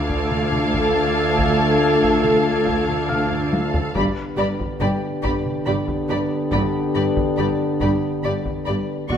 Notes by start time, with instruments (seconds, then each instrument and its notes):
Already playing: cello section D2, double bass section D2, trombone section D3 A3, french horn section D4 F4, viola section A4, violin section F5 A5 D6 G#6
0.10 taiko
0.31 taiko mid
0.52 taiko mid
0.74 taiko
1.38 taiko
2.03 taiko
2.24 taiko mid
2.67 taiko
2.89 taiko mid
3.09 felt piano F5 F6, taiko mid
3.32 taiko low-mid
3.53 taiko high
3.74 taiko low
3.94 double bass section G1, cello section G2, trombone section D3 B3, french horn section D4 G4, viola section G4, violin section D5 B5, taiko
4.37 double bass section G1, cello section G2, viola section G4, violin section D5 B5
4.60 taiko
4.80 double bass section G1, cello section G2, viola section G4, violin section D5 B5, felt piano G5, taiko mid
5.23 double bass section G1, cello section G2, viola section G4, violin section D5 B5, taiko
5.46 taiko mid
5.66 double bass section G1, cello section G2, viola section G4, violin section D5 B5, taiko mid
5.88 taiko
6.09 double bass section G1, cello section G2, viola section G4, violin section D5 B5
6.52 double bass section G1, cello section G2, viola section G4, violin section D5 B5, taiko
6.95 double bass section G1, cello section G2, viola section G4, violin section D5 B5
7.17 taiko
7.37 double bass section G1, cello section G2, viola section G4, violin section D5 B5
7.81 double bass section G1, cello section G2, viola section G4, violin section D5 B5, taiko
8.23 double bass section G1, cello section G2, viola section G4, violin section D5 B5
8.45 taiko
8.65 double bass section G1, cello section G2, viola section G4, violin section D5 B5
9.08 double bass section B1, cello section B2, french horn section C#3 F#4, trombone section C#3 B3, viola section F#4, violin section D5 C#6, taiko